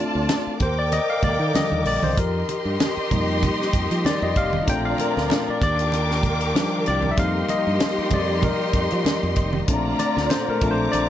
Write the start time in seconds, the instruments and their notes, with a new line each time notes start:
Already playing: tine electric piano A3 C4 D4, string section F4 D5 A5
0.15 fingered electric bass D2
0.29 snare, closed hi-hat, high conga
0.47 muted fingered electric bass stroke
0.60 fingered electric bass D#2, string section A#4 G5 D6, tine electric piano C5, kick, closed hi-hat
0.79 tine electric piano D5
0.92 tine electric piano D#5, closed hi-hat, muted conga
1.10 tine electric piano F5
1.23 fingered electric bass D#2, tine electric piano D5, kick, closed hi-hat, low conga
1.39 fingered electric bass D#3
1.54 tine electric piano D3 F3 G3 D#5, snare, closed hi-hat, high conga
1.72 fingered electric bass D#2
1.85 fingered electric bass A#1, tine electric piano D5, open hi-hat
2.02 fingered electric bass C2, tine electric piano C5, high conga
2.17 fingered electric bass F2, string section F3 D#4 G4 A#4 D#5 C6, tine electric piano A#4, kick, closed hi-hat
2.49 closed hi-hat, muted conga
2.65 fingered electric bass G2
2.80 snare, closed hi-hat, high conga
2.97 muted fingered electric bass stroke
3.11 fingered electric bass F2, tine electric piano G3 A#3 D#4, kick, closed hi-hat, low conga
3.43 kick, closed hi-hat, muted conga, low conga
3.62 snare
3.73 fingered electric bass F2, kick, closed hi-hat
3.91 fingered electric bass F3, closed hi-hat
4.05 tine electric piano D5, snare, closed hi-hat, high conga
4.22 fingered electric bass F2, tine electric piano D#5
4.36 fingered electric bass F1, tine electric piano F5, kick, closed hi-hat
4.53 high conga
4.66 fingered electric bass A#1, string section A#2 F3 D4 F4 D5 A#5, tine electric piano A3 C4 D4 G5, kick, closed hi-hat, muted conga
4.85 tine electric piano F5
4.98 tine electric piano A#4, closed hi-hat, muted conga
5.17 fingered electric bass D2, snare
5.30 snare, closed hi-hat, high conga
5.48 tine electric piano D5, muted fingered electric bass stroke
5.60 fingered electric bass D#2, string section D#3 F4 G4 A#4 G5 D6, tine electric piano D5, kick, closed hi-hat
5.79 closed hi-hat
5.92 closed hi-hat, muted conga
6.11 snare
6.23 kick, closed hi-hat, low conga
6.41 closed hi-hat
6.55 tine electric piano F3 G3 D4, snare, closed hi-hat, high conga
6.86 fingered electric bass C2, tine electric piano D5, closed hi-hat
7.02 high conga
7.11 tine electric piano E5
7.16 fingered electric bass F2, string section F3 D#4 G4 A#4 D#5 C6, tine electric piano G3 A#3 D#4 F5, kick, closed hi-hat, muted conga
7.49 tine electric piano D#5, closed hi-hat, muted conga
7.67 fingered electric bass G2
7.80 snare, closed hi-hat, high conga
7.98 muted fingered electric bass stroke
8.10 fingered electric bass F2, tine electric piano D5, kick, closed hi-hat, low conga
8.42 tine electric piano A#4, kick, closed hi-hat, muted conga, low conga
8.73 fingered electric bass F2, kick, closed hi-hat
8.91 fingered electric bass F3, closed hi-hat
9.05 snare, closed hi-hat, high conga
9.23 fingered electric bass F2
9.36 fingered electric bass F1, kick, closed hi-hat
9.53 high conga
9.68 fingered electric bass A#1, string section A#2 D3 A3 F4 D5 A#5, tine electric piano A3 C4 D4, kick, closed hi-hat, muted conga
9.99 tine electric piano D5, closed hi-hat, muted conga
10.17 fingered electric bass D2, snare
10.30 tine electric piano C5, snare, closed hi-hat, high conga
10.48 tine electric piano A#4, muted fingered electric bass stroke
10.61 fingered electric bass A#1, tine electric piano A3 C4 D4, string section F4 A#5 D6, kick, closed hi-hat
10.71 tine electric piano C5
10.92 fingered electric bass A#1, tine electric piano D5, closed hi-hat, muted conga